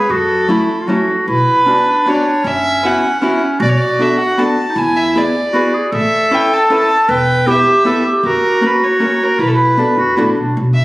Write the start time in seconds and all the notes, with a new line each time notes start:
Already playing: G#4 B4
0.09 F#2 F#4 A4
0.48 F#3 A3 C#4 E4
0.81 F4
0.87 F#3 A3 C#4 E4 F#4
1.28 B1 E4 B4
1.65 B3 C#4 D4 F#4
2.06 B3 C#4 D4 F#4 C#5
2.14 D5
2.21 C#5
2.44 F#1 C#4 E5
2.83 B3 C#4 E4 F#4 F#5
3.20 B3 C#4 E4 F#4
3.60 B1 F#4 D5
3.69 C#5
3.77 D5
3.99 B3 D4 F#4 A4 E5
4.20 F#5
4.38 B3 D4 F#4 A4 A5
4.69 D#4
4.75 E2 E4 G#5
4.97 E5
5.15 B3 E4 G#4 B4 D5
5.53 B3 E4 F#4 G#4 B4
5.74 G#4
5.92 A1 A4 E5
6.31 C#4 E4 A4 B4 G5
6.53 A5
6.70 C#4 E4 A4 B4
6.75 A5
7.09 E1 B4
7.13 G5
7.47 B3 E4 G4 B4
7.51 E5
7.85 B3 E4 G4 A4 B4
8.06 G4
8.23 F#1 F#4 A#4
8.61 A#3 C#4 F#4 A#4
8.66 B4
8.84 C#5
9.00 A#3 C#4 F#4 A#4
9.23 A#4
9.39 B1 E4 B4
9.47 A4
9.55 B4
9.77 B3 D4 F#4 A4
9.97 F#1 F#4
10.16 A1 B3 D4 E4 F#4 A4
10.37 B1 D4
10.57 B1
10.74 E5